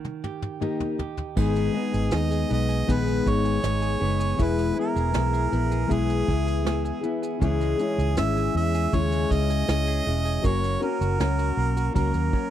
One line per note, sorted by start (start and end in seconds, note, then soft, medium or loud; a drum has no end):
0.00 0.16 D#3 medium
0.00 3.36 D#3 medium
0.00 0.17 A#3 medium
0.05 mid tom medium
0.24 0.98 G4 medium
0.24 mid tom medium
0.42 mid tom medium
0.60 0.97 D#3 medium
0.60 0.99 A#3 medium
0.60 0.99 D#4 medium
0.60 1.74 D#4 medium
0.60 0.99 G4 medium
0.60 1.00 A#4 medium
0.60 mid tom medium
0.80 floor tom medium
0.98 1.29 D#3 soft
0.98 1.45 G4 medium
0.98 floor tom medium
1.17 floor tom medium
1.36 1.68 G#1 loud
1.36 1.74 G#2 medium
1.36 1.75 D#3 medium
1.36 1.64 G#3 medium
1.36 1.75 G#3 medium
1.36 1.64 B3 medium
1.36 1.56 B3 medium
1.36 1.75 B3 medium
1.36 1.64 D#4 medium
1.36 1.74 D#4 medium
1.36 1.73 G#4 medium
1.36 2.16 G#4 medium
1.36 1.64 B4 medium
1.36 kick medium
1.36 crash medium
1.56 2.50 B3 medium
1.56 snare soft
1.56 shaker soft
1.73 2.83 G#3 medium
1.73 2.83 B3 medium
1.73 2.12 B3 soft
1.73 2.11 D#4 medium
1.73 2.83 D#4 medium
1.73 2.12 D#4 soft
1.73 2.12 G#4 medium
1.73 2.84 B4 medium
1.77 2.10 G#3 soft
1.94 2.09 G#1 medium
1.94 2.31 G#4 medium
1.94 shaker soft
2.11 2.43 D#2 medium
2.11 2.50 G#3 medium
2.11 2.50 B3 soft
2.11 3.25 D#4 medium
2.11 2.49 D#4 soft
2.11 2.48 G#4 soft
2.11 2.51 D#5 loud
2.11 snare medium
2.11 shaker medium
2.31 2.68 G#4 medium
2.31 shaker medium
2.49 2.82 B1 medium
2.49 2.87 G#3 soft
2.49 2.88 B3 medium
2.49 2.87 B3 soft
2.49 2.88 D#4 soft
2.49 2.88 G#4 soft
2.49 2.93 D#5 loud
2.49 shaker soft
2.69 3.45 G#4 medium
2.69 shaker medium
2.87 3.20 A#1 medium
2.87 3.63 G#2 medium
2.87 3.63 D#3 medium
2.87 3.62 G#3 medium
2.87 3.06 B3 medium
2.87 3.63 B3 medium
2.87 3.63 D#4 medium
2.87 3.65 G#4 medium
2.87 kick medium
2.87 shaker medium
2.91 3.31 B4 loud
3.07 4.01 B3 medium
3.07 shaker soft
3.26 3.57 G#1 medium
3.26 3.62 D#4 medium
3.26 4.44 C#5 loud
3.26 kick medium
3.26 shaker soft
3.45 3.82 G#4 medium
3.45 shaker medium
3.62 3.95 G#1 medium
3.62 4.01 G#3 medium
3.62 4.01 B3 medium
3.62 4.47 D#4 medium
3.62 4.00 D#4 medium
3.62 3.99 G#4 medium
3.62 snare loud
3.62 shaker medium
3.82 4.19 G#4 medium
3.82 shaker soft
4.00 4.32 F#1 medium
4.00 4.36 G#3 soft
4.00 4.58 B3 medium
4.00 4.37 B3 soft
4.00 4.38 D#4 soft
4.00 4.38 G#4 medium
4.19 4.95 G#4 medium
4.19 shaker medium
4.37 4.70 E1 medium
4.37 4.76 E3 medium
4.37 5.90 E3 medium
4.37 4.76 G#3 medium
4.37 4.66 G#3 medium
4.37 4.76 B3 medium
4.37 4.66 B3 medium
4.37 4.75 E4 medium
4.37 4.67 E4 medium
4.37 4.73 G#4 medium
4.37 4.67 B4 medium
4.37 kick loud
4.37 shaker medium
4.42 4.79 B4 medium
4.58 5.51 B3 medium
4.58 snare soft
4.58 shaker soft
4.75 5.85 G#3 medium
4.75 5.12 B3 soft
4.75 5.86 B3 medium
4.75 5.14 E4 medium
4.75 5.12 E4 soft
4.75 5.14 G#4 soft
4.79 5.86 E4 medium
4.79 5.87 G#4 medium
4.79 5.94 A#4 medium
4.96 5.12 E1 medium
4.96 5.33 G#4 medium
4.96 shaker soft
5.11 5.46 B1 medium
5.11 5.51 G#3 medium
5.11 5.51 B3 medium
5.11 5.50 E4 medium
5.11 6.28 E4 medium
5.11 5.48 G#4 medium
5.11 snare loud
5.11 shaker medium
5.33 5.71 G#4 medium
5.33 shaker medium
5.49 5.84 A#1 medium
5.49 6.08 B3 medium
5.49 5.87 B3 soft
5.49 5.88 E4 soft
5.49 5.88 G#4 soft
5.49 shaker soft
5.71 6.47 G#4 medium
5.71 shaker medium
5.87 6.22 B1 medium
5.87 7.39 E3 medium
5.87 7.41 E3 medium
5.87 6.62 G#3 medium
5.87 6.63 B3 medium
5.87 6.65 E4 medium
5.87 6.66 G#4 medium
5.87 kick medium
5.87 shaker medium
5.92 7.05 G#4 medium
6.09 7.02 B3 medium
6.09 shaker soft
6.28 6.90 C#2 medium
6.28 6.65 E4 medium
6.28 kick medium
6.47 6.84 G#4 medium
6.47 shaker medium
6.62 7.02 G#3 medium
6.62 7.03 B3 medium
6.62 7.02 E4 medium
6.62 7.79 E4 medium
6.62 7.00 G#4 medium
6.62 snare loud
6.67 shaker medium
6.85 7.22 G#4 medium
6.85 shaker soft
7.01 7.49 B3 medium
7.01 7.41 B3 medium
7.01 7.40 E4 medium
7.01 7.40 G#4 medium
7.01 shaker soft
7.22 7.99 G#4 medium
7.22 shaker medium
7.39 7.73 C#2 loud
7.39 7.78 C#3 medium
7.39 8.93 E3 medium
7.39 7.79 G#3 medium
7.39 7.68 G#3 medium
7.39 7.79 C#4 medium
7.39 7.69 C#4 medium
7.39 7.79 E4 medium
7.39 7.69 E4 medium
7.39 7.77 G#4 medium
7.39 kick medium
7.39 shaker medium
7.43 8.14 G#4 medium
7.43 7.69 C#5 medium
7.60 8.55 G#3 medium
7.60 snare soft
7.60 shaker soft
7.78 8.87 G#3 medium
7.78 8.88 C#4 medium
7.78 8.18 C#4 medium
7.78 8.16 C#4 soft
7.78 8.17 E4 soft
7.78 8.88 E4 medium
7.78 8.16 G#4 medium
7.78 8.89 C#5 medium
7.78 shaker soft
7.98 8.18 C#2 medium
7.98 8.36 G#4 medium
7.98 shaker soft
8.15 8.48 G#1 medium
8.15 8.91 G#3 soft
8.15 8.93 C#4 medium
8.15 9.31 C#4 medium
8.15 8.92 E4 medium
8.15 8.93 G#4 medium
8.15 8.53 E5 loud
8.15 snare loud
8.15 shaker medium
8.37 8.74 G#4 medium
8.37 shaker soft
8.55 8.86 E2 loud
8.55 9.11 G#3 medium
8.55 8.96 E5 loud
8.74 9.49 G#4 medium
8.74 shaker medium
8.92 9.24 D#2 loud
8.92 9.68 C#3 medium
8.92 9.66 G#3 medium
8.92 9.68 C#4 medium
8.92 9.68 E4 loud
8.92 9.69 G#4 medium
8.92 9.33 C#5 loud
8.92 kick medium
8.92 shaker medium
9.12 10.06 G#3 medium
9.12 shaker medium
9.31 9.62 C#2 medium
9.31 9.69 C#4 medium
9.31 10.47 D#5 loud
9.31 kick medium
9.31 shaker medium
9.50 9.87 G#4 medium
9.50 shaker medium
9.67 9.99 C#2 medium
9.67 10.06 G#3 medium
9.67 10.06 C#4 medium
9.67 10.82 C#4 medium
9.67 10.05 E4 medium
9.67 10.03 G#4 medium
9.67 snare loud
9.67 shaker medium
9.87 10.24 G#4 medium
9.87 shaker soft
10.04 10.37 E1 medium
10.04 10.44 G#3 medium
10.04 10.44 E4 soft
10.04 10.43 G#4 soft
10.08 10.42 C#4 soft
10.25 10.52 G#4 medium
10.25 shaker medium
10.42 10.75 F#1 medium
10.42 10.81 F#3 medium
10.42 10.70 A#3 medium
10.42 10.62 A#3 medium
10.42 10.81 C#4 medium
10.42 10.71 C#4 medium
10.42 10.71 F#4 medium
10.42 10.81 F#4 medium
10.42 10.79 A#4 medium
10.42 10.72 C#5 medium
10.42 10.82 C#5 medium
10.42 kick loud
10.42 shaker medium
10.63 11.57 A#3 medium
10.63 snare soft
10.63 shaker soft
10.81 11.90 A#3 medium
10.81 11.90 C#4 medium
10.81 11.19 C#4 medium
10.81 11.19 C#4 soft
10.81 11.20 F#4 soft
10.81 11.91 F#4 medium
10.81 11.19 A#4 medium
10.81 11.92 A#4 loud
10.81 11.91 C#5 medium
10.81 shaker soft
11.01 11.16 F#1 medium
11.01 11.38 F#4 medium
11.01 shaker medium
11.19 11.51 C#2 medium
11.19 11.93 F#3 medium
11.19 11.93 C#4 medium
11.19 12.32 C#4 medium
11.19 11.94 F#4 medium
11.19 11.95 A#4 medium
11.19 snare loud
11.19 shaker medium
11.39 11.76 F#4 medium
11.39 shaker medium
11.57 11.88 B1 medium
11.57 11.94 A#3 medium
11.77 12.50 F#4 medium
11.77 shaker medium
11.94 12.11 C#2 medium
11.94 12.50 F#3 medium
11.94 12.13 A#3 medium
11.94 12.50 C#4 medium
11.94 12.50 F#4 medium
11.94 12.50 A#4 medium
11.94 kick medium
11.94 shaker medium
12.14 12.29 D#2 medium
12.14 12.50 A#3 medium
12.14 shaker soft
12.33 12.50 C#4 medium
12.33 kick medium